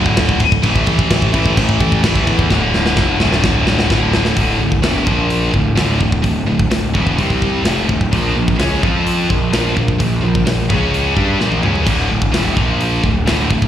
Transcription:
Already playing: picked electric bass D1, distorted electric guitar D2 A2 D3
0.06 kick
0.17 picked electric bass D1, kick, snare, crash
0.29 kick
0.40 kick, crash
0.52 kick
0.63 picked electric bass A1, distorted electric guitar A2 E3 A3, kick, crash
0.76 kick
0.86 picked electric bass A1, kick, crash
0.99 kick
1.10 picked electric bass A1, kick, snare, crash
1.22 kick
1.32 picked electric bass A1, distorted electric guitar A2 E3 A3, kick, crash
1.46 kick
1.57 picked electric bass A1, kick, crash
1.69 kick
1.80 picked electric bass A1, kick, crash
1.92 kick
2.03 picked electric bass A1, distorted electric guitar A2 E3 A3, kick, snare, crash
2.16 kick
2.27 picked electric bass E2, kick, crash
2.39 kick
2.50 picked electric bass D1, distorted electric guitar D2 A2 D3, kick, snare
2.74 picked electric bass D1, snare
2.86 snare
2.97 picked electric bass F1, kick, snare
3.19 picked electric bass D1, distorted electric guitar D2 A2 D3, snare
3.33 snare
3.44 picked electric bass D1, kick, snare
3.67 picked electric bass D1, snare
3.79 snare
3.89 picked electric bass D1, distorted electric guitar D2 A2 D3, kick, snare
4.13 snare
4.25 snare
4.36 picked electric bass D1, distorted electric guitar D2 A2 D3, kick, open hi-hat
4.59 picked electric bass D1, distorted electric guitar D2 A2
4.72 kick
4.82 picked electric bass E1, distorted electric guitar E2 B2 E3, snare, open hi-hat
5.06 picked electric bass A#1, distorted electric guitar A#2 F3 A#3, kick
5.30 open hi-hat
5.52 picked electric bass D1, distorted electric guitar D2 A2, kick
5.76 picked electric bass D1, distorted electric guitar D2 A2 D3, snare, open hi-hat
5.99 picked electric bass D1, distorted electric guitar D2 A2, kick
6.12 kick
6.23 picked electric bass D1, distorted electric guitar D2 A2, kick, open hi-hat
6.47 picked electric bass D1, distorted electric guitar D2 A2
6.59 kick
6.71 picked electric bass D1, distorted electric guitar D2 A2, snare, open hi-hat
6.93 picked electric bass E1, distorted electric guitar E2 B2 E3, kick
7.07 kick
7.17 picked electric bass C2, distorted electric guitar C3 G3 C4, kick, open hi-hat
7.30 kick
7.42 kick
7.64 picked electric bass F1, distorted electric guitar F2 C3 F3, snare, open hi-hat
7.88 picked electric bass D1, distorted electric guitar D2 A2, kick
8.01 kick
8.11 picked electric bass A#1, distorted electric guitar A#2 F3 A#3, kick, open hi-hat
8.36 picked electric bass A#1, distorted electric guitar A#2 F3
8.48 kick
8.59 picked electric bass C#2, distorted electric guitar C#3 G#3 C#4, snare, open hi-hat
8.82 picked electric bass F2, distorted electric guitar F3 C4 F4, kick
9.07 open hi-hat
9.30 picked electric bass A#1, distorted electric guitar A#2 F3, kick
9.52 picked electric bass A#1, distorted electric guitar A#2 F3 A#3, snare, open hi-hat
9.76 picked electric bass A#1, distorted electric guitar A#2 F3, kick
9.88 kick
9.99 picked electric bass A#1, distorted electric guitar A#2 F3, kick, open hi-hat
10.22 picked electric bass A#1, distorted electric guitar A#2 F3
10.35 kick
10.46 picked electric bass A#1, distorted electric guitar A#2 F3, snare, open hi-hat
10.69 picked electric bass C#2, distorted electric guitar C#3 G#3 C#4, kick
10.94 open hi-hat
11.15 picked electric bass G2, distorted electric guitar G3 D4 G4, kick
11.39 picked electric bass A#1, distorted electric guitar A#2 F3 A#3, snare
11.52 high tom
11.62 picked electric bass C#2, distorted electric guitar C#3 G#3 C#4, mid tom
11.75 floor tom
11.85 picked electric bass D1, distorted electric guitar D2 A2 D3, kick, open hi-hat, crash
12.09 picked electric bass D1, distorted electric guitar D2 A2
12.22 kick
12.32 picked electric bass E1, distorted electric guitar E2 B2 E3, snare, open hi-hat
12.56 picked electric bass A#1, distorted electric guitar A#2 F3 A#3, kick
12.81 open hi-hat
13.03 picked electric bass D1, distorted electric guitar D2 A2, kick
13.26 picked electric bass D1, distorted electric guitar D2 A2 D3, snare, open hi-hat
13.50 picked electric bass D1, distorted electric guitar D2 A2, kick
13.62 kick

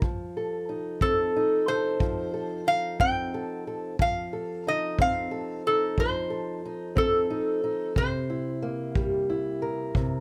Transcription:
0.02 steel-string acoustic guitar F3, kick
0.37 steel-string acoustic guitar A4
0.69 steel-string acoustic guitar D#4
1.01 steel-string acoustic guitar C4, resonator guitar played with a steel bar A4, kick
1.36 steel-string acoustic guitar D#4
1.68 steel-string acoustic guitar A4, resonator guitar played with a steel bar C5
2.00 steel-string acoustic guitar F3, kick
2.34 steel-string acoustic guitar A4
2.67 steel-string acoustic guitar D#4, resonator guitar played with a steel bar F5
3.00 steel-string acoustic guitar C4, resonator guitar played with a steel bar G5, kick
3.34 steel-string acoustic guitar A4
3.67 steel-string acoustic guitar A4
3.99 steel-string acoustic guitar F3, resonator guitar played with a steel bar F5, kick
4.33 steel-string acoustic guitar A4
4.67 steel-string acoustic guitar D#4, resonator guitar played with a steel bar D#5
4.99 steel-string acoustic guitar C4, resonator guitar played with a steel bar F5, kick
5.31 steel-string acoustic guitar A4
5.67 steel-string acoustic guitar D#4, resonator guitar played with a steel bar A4
5.98 steel-string acoustic guitar F3, resonator guitar played with a steel bar C5, kick
6.30 steel-string acoustic guitar A4
6.65 steel-string acoustic guitar D#4
6.95 steel-string acoustic guitar C4, resonator guitar played with a steel bar A4, kick
7.30 steel-string acoustic guitar D#4
7.64 steel-string acoustic guitar D#4
7.96 steel-string acoustic guitar C3, resonator guitar played with a steel bar C5, kick
8.30 steel-string acoustic guitar E4
8.62 steel-string acoustic guitar A#3
8.95 steel-string acoustic guitar G3, kick
9.30 steel-string acoustic guitar E4
9.62 steel-string acoustic guitar A#4
9.95 steel-string acoustic guitar C3, kick

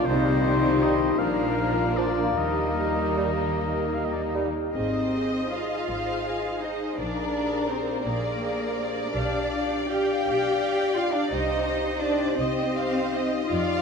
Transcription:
0.06 double bass section C2, harp C3, cello section C3, viola section D#3, french horn section G3 D#4, violin section G3 C4, flute D#4, oboe C5, trumpet C5
0.24 harp D#4
0.43 harp G3
0.62 harp G4
0.81 bassoon G3, clarinet D#4, flute G4, harp D#5, oboe D#5
1.00 harp G4
1.18 double bass section A#1, cello section A#2, harp A#2, french horn section F3 D4, viola section F3, violin section A#3 D4, trumpet A#4, flute A#4, oboe F5
1.38 harp D4
1.57 harp F4
1.76 harp A#4
1.96 bassoon F3, clarinet D4, flute F4, oboe D5, harp D5
2.16 harp F5
2.37 double bass section D#2, harp D#3, cello section D#3, french horn section G3 D#4, viola section G3, violin section D#4, flute G4, oboe D#5
2.41 violin section A#3
2.58 harp D#4
2.77 harp G4
2.97 harp A#4
3.16 bassoon G3, clarinet D#4, harp D#5
3.35 harp G5
3.75 harp G5
3.93 harp D#5, oboe F5
4.05 oboe D#5
4.13 harp A#4, oboe D5
4.23 oboe D#5
4.33 bassoon G3, clarinet D#4, harp G4
4.54 harp D#4
4.73 double bass section G#1, harp G#2, cello section C4, viola section G#4 D#5, violin section C5 D#5
4.94 harp D#4
5.13 harp G#4, viola section G#4 D#5
5.33 harp C5
5.53 cello section F4, viola section G#4 D#5, harp D#5, violin section F5
5.71 harp G#5
5.89 double bass section G#1, viola section G#4 D#5, violin section C5, harp C6
6.09 harp G#5
6.25 viola section G#4 D#5, violin section G#4, harp D#5
6.44 harp C5
6.62 cello section D#4, harp G#4, viola section G#4 D#5, violin section C5 D#5
6.80 harp D#4
6.97 double bass section A#1, harp A#2, cello section D4, viola section G#4 D5, violin section A#4 D5
7.17 harp D4
7.35 harp G4, viola section G#4 D5
7.52 harp C5
7.69 cello section C4, viola section G#4 D5, violin section C5
7.87 harp G5
8.05 double bass section A#1, cello section A#3, viola section G#4 D5, violin section A#4 D5, harp C6
8.40 viola section G#4 D5, harp D5
8.58 harp C5
8.76 harp G4, viola section G#4 D5
8.94 harp D4
9.13 double bass section B1, harp B2, cello section D4, viola section G4 F5, violin section D5
9.32 harp D4
9.51 harp F4, viola section G4 F5
9.71 harp G4
9.89 viola section G4 F5, cello section G4, harp D5, violin section G5
10.08 harp F5
10.25 double bass section B1, viola section G4 F5, violin section D5, harp G5
10.43 harp F5
10.60 viola section G4 F5, harp D5
10.78 harp G4
10.96 cello section F4, harp F4, viola section G4 F5, violin section F5
11.14 harp D4, cello section D4, violin section D5
11.30 double bass section C2, harp C3, cello section D#4, viola section G4 D#5, violin section C5 D#5
11.48 harp C4
11.65 harp D#4, viola section G4 D#5
11.84 harp G4
12.00 cello section D4, viola section G4 D#5, harp C5, violin section D5
12.35 double bass section C2, cello section C4, viola section G4 D#5, violin section C5 D#5, harp G5
12.54 harp D#5
12.73 viola section G4 D#5, violin section F5
12.92 harp G4
13.11 harp D#4, viola section G4 D#5, violin section D#5
13.32 harp C4
13.49 harp F2, double bass section F2, cello section F4, violin section D5 F5
13.68 harp C4

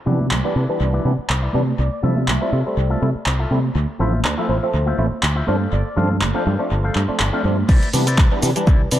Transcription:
0.06 fingered electric bass C3, clav E3 G3 B3 D4, clean electric guitar E4 B4 D5, tambourine, low conga
0.20 tambourine, high conga
0.31 fingered electric bass C2, clap, tambourine
0.44 clav E3 G3 B3 D4, clean electric guitar E4 B4 D5
0.56 fingered electric bass C3, clav E3 G3 B3 D4, tambourine
0.69 clav E3 G3 B3 D4, tambourine
0.80 fingered electric bass C2, tambourine
0.93 clean electric guitar E4 B4 D5, high conga
1.05 fingered electric bass C3, clav E3 G3 B3 D4, tambourine
1.18 muted fingered electric bass stroke, tambourine
1.29 fingered electric bass C2, muted clean electric guitar stroke, clap, tambourine
1.42 clean electric guitar E4 B4 D5
1.53 fingered electric bass C3, clav E3 G3 B3 D4, tambourine, high conga
1.67 muted clean electric guitar stroke, tambourine
1.79 fingered electric bass C2, analog polysynth D5
1.93 analog polysynth D5
2.03 fingered electric bass C3, clav G3 A3 C4 E4, clean electric guitar F4 A4 E5, analog polysynth E5, tambourine, low conga
2.16 tambourine, high conga
2.27 fingered electric bass C2, clap, tambourine
2.41 clav G3 A3 C4 E4, clean electric guitar F4 A4 E5
2.52 fingered electric bass C3, clav G3 A3 C4 E4, tambourine
2.66 clav G3 A3 C4 E5, tambourine
2.77 fingered electric bass C2
2.90 clean electric guitar F4 A4 E5, high conga
3.01 fingered electric bass C3, clav G3 A3 C4 E4, tambourine
3.15 muted fingered electric bass stroke
3.26 fingered electric bass C2, muted clean electric guitar stroke, clap
3.39 clean electric guitar F4 A4 E5
3.51 fingered electric bass C3, clav G3 A3 C4 E4, tambourine, high conga
3.64 muted clean electric guitar stroke, tambourine
3.75 fingered electric bass D2, tambourine
3.99 fingered electric bass A1, clav F3 A3 C4 E4, clean electric guitar F4 C5 E5, tambourine, low conga
4.13 tambourine, high conga
4.25 fingered electric bass D2, clap, tambourine
4.38 clav F3 A3 C4 E4, clean electric guitar F4 C5 E5
4.49 fingered electric bass A1, clav F3 A3 C4 E4, tambourine
4.63 clav F3 A3 C4 E5, tambourine
4.74 fingered electric bass D2, tambourine
4.86 clean electric guitar F4 C5 E5, high conga
4.98 fingered electric bass A1, clav F3 A3 C4 E4, tambourine
5.12 tambourine
5.22 fingered electric bass D2, muted clean electric guitar stroke, clap
5.36 clean electric guitar F4 C5 E5
5.47 fingered electric bass G2, clav F3 A3 C4 D4, clean electric guitar A4 C5 F5, tambourine, high conga
5.60 tambourine
5.72 fingered electric bass G1, analog polysynth D5, tambourine
5.85 analog polysynth D5, tambourine
5.96 fingered electric bass G2, clav F3 A3 C4 D4, clean electric guitar A4 C5 F5, tambourine, low conga
6.10 tambourine, high conga
6.22 fingered electric bass G1, clap, tambourine
6.34 clav F3 A3 C4 D4, clean electric guitar A4 C5 F5
6.46 fingered electric bass G2, clav F3 A3 C4 D4, tambourine
6.59 clav F3 A3 C4 D4, tambourine
6.71 fingered electric bass G1, tambourine
6.84 clean electric guitar A4 C5 F5, tambourine, high conga
6.94 fingered electric bass G2, clap, tambourine
7.08 clav F3 A3 C4 D4, muted fingered electric bass stroke, tambourine
7.20 fingered electric bass G1, muted clean electric guitar stroke, clap
7.33 clav F3 A3 C4 D4, clean electric guitar A4 C5 F5, tambourine
7.44 fingered electric bass G2, clav F3 A3 C4 D4, tambourine, high conga
7.58 muted clean electric guitar stroke, tambourine
7.69 fingered electric bass C2, clean electric guitar E4 B4 C5 D5, kick, crash, shaker
7.83 closed hi-hat
7.93 fingered electric bass C3, clav E3 G3 B3 D4, open hi-hat, shaker
8.07 clean electric guitar E4 B4 C5 D5, closed hi-hat, shaker
8.18 fingered electric bass C2, kick, clap, shaker
8.31 clav E3 G3 B3 D4
8.42 fingered electric bass C3, clav E3 G3 B3 D4, open hi-hat, shaker
8.56 clav E3 G3 D4, closed hi-hat, shaker
8.67 fingered electric bass C2, clean electric guitar E4 B4 C5 D5, kick, shaker
8.91 fingered electric bass C3, clav E3 G3 B3 D4, muted clean electric guitar stroke, open hi-hat, shaker

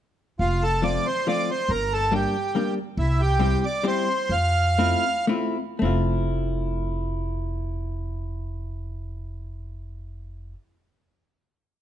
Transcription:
0.39 upright bass F1, accordion F4
0.63 accordion A4
0.82 hollow-body jazz guitar F3 A3 C4 F4, accordion D5
1.06 accordion C5
1.27 hollow-body jazz guitar F3 A3 C4 F4, accordion D5
1.51 accordion C5
1.69 upright bass G1, accordion A#4
1.93 accordion A4
2.12 hollow-body jazz guitar G3 A#3 D4 G4, accordion G4
2.55 hollow-body jazz guitar G3 A#3 D4 G4
2.97 upright bass C2, accordion E4
3.21 accordion G4
3.39 hollow-body jazz guitar G3 C4 E4 G4
3.65 accordion D5
3.83 hollow-body jazz guitar G3 C4 E4 G4, accordion C5
4.29 upright bass F2, accordion F5
4.78 hollow-body jazz guitar A3 C4 E4 F4
5.27 hollow-body jazz guitar A3 C4 E4 F4
5.79 upright bass F1, hollow-body jazz guitar A3 C4 E4
5.85 hollow-body jazz guitar F4

